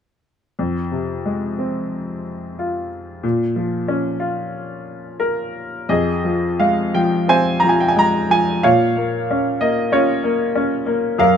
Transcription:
grand piano
0.59 F2
0.92 C3
1.25 G#3
1.59 C4
2.59 F4
3.23 A#2
3.56 F3
3.88 C#4
4.20 F4
5.20 A#4
5.89 F2 G#4 D#5
6.25 F3
6.60 G#3 F5
6.94 F3 G5
7.28 C4 C5 G#5
7.60 A#5
7.64 F3
7.69 G#5
7.80 G5
7.88 G#5
7.96 G#3 A#5
8.30 F3 G#5
8.63 A#2 C#5 F5
8.96 A#3
9.31 C#4
9.60 A#3 D#5
9.92 C#4 F4 C#5
10.24 A#3
10.55 C#4
10.86 A#3
11.18 F#2 A#4 F5

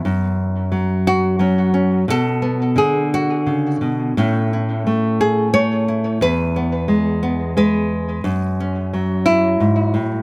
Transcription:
nylon-string guitar
0.05 F#2
0.72 F#3
1.07 F#4
1.39 F#3 C#4
1.74 C#4
2.08 B2 A4
2.42 B3
2.76 D3 G#4
3.14 F#4
3.46 C#3
3.81 B2
4.17 A2 A3 C#4 E4
4.53 E4
4.87 A3
5.21 G#4
5.54 A3 C#5
5.88 E4
6.21 E2 B4
6.56 B3
6.88 G#3
7.23 B3
7.57 G#3 B4
8.24 F#2
8.60 C#4
8.93 F#3
9.26 E4
9.60 G#2
9.94 A2

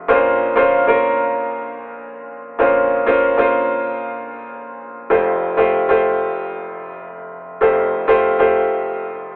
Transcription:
grand piano
Already playing: A3 F4 G4 C5
0.08 A#1 A#2 A#3 C#4 F4 C5
0.56 A#3 C#4 F4 C5
0.87 A#3 C#4 F4 A#4
2.59 A#1 A#2 A#3 C#4 F4 C5
3.06 A#3 C#4 F4 C5
3.38 A#3 C#4 F4 C5
5.10 F1 F2 A3 F4 G4 C5
5.57 A3 F4 G4 C5
5.88 A3 F4 G4 C5
7.61 F1 F2 A3 F4 G4 C5
8.07 A3 F4 G4 C5
8.39 A3 F4 G4 C5

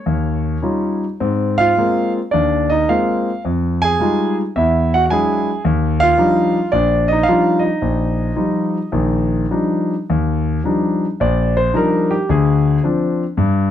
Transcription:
grand piano
Already playing: C#5
0.06 D#2
0.62 G3 C#4 D#4 F4
1.20 G#2 C4
1.58 F4 F5
1.77 G#3 A#3 C4 F4
2.31 D#2 D4 D5
2.70 D#4 D#5
2.89 G#3 A#3 C4 F4 F5
3.45 F2
3.82 G#4 G#5
4.00 G3 G#3 D#4 F4
4.56 E2 E4 E5
4.94 F#4 F#5
5.06 F#5
5.10 F#3 G#3 D4 E4 G#4 G#5
5.65 D#2
6.00 F4 F5
6.17 F3 G3 D4 D#4
6.72 A#1 D4 D5
7.08 D#5
7.12 D#4
7.23 F5
7.28 F3 G3 D4 D#4 F4
7.59 D#5
7.64 D#4
7.82 A#1
8.36 F3 G3 D#4 F4
8.92 A#1 D#3
9.51 F3 G3 D4 D#4
10.10 D#2
10.64 F3 G3 D4 D#4
11.20 A#1 D5
11.57 C5
11.74 F3 G3 D4 D#4 A#4
12.11 G4
12.29 D2 D3 G#4
12.83 F3 C4 D4
13.37 G2

